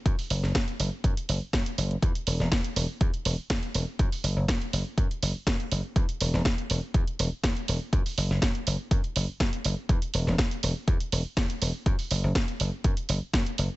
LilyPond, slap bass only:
\new Staff \with { instrumentName = "Slap bass" } { \clef bass \time 4/4 \key fis \dorian \tempo 4 = 122 fis,16 r16 fis,,16 fis,,16 r8 fis,,16 r16 fis,16 r16 fis,,16 r16 fis,16 r16 fis,,16 r16 | e,16 r16 e,,16 e,,16 e,16 r16 e,,16 r16 e,16 r16 e,,16 r16 e,16 r16 e,,16 r16 | fis,16 r16 fis,,16 fis,,16 fis,16 r16 fis,,16 r16 fis,16 r16 fis,,16 r16 fis,16 r16 fis,,16 r16 | e,16 r16 e,,16 e,,16 r8 e,,16 r16 e,16 r16 e,,16 r16 e,16 r16 e,,16 r16 |
fis,16 r16 fis,,16 fis,,16 r8 fis,,16 r16 fis,16 r16 fis,,16 r16 fis,16 r16 fis,,16 r16 | e,16 r16 e,,16 e,,16 r8 e,,16 r16 e,16 r16 e,,16 r16 e,16 r16 e,,16 r16 | fis,16 r16 fis,,16 fis,,16 r8 fis,,16 r16 fis,16 r16 fis,,16 r16 fis,16 r16 fis,,16 r16 | }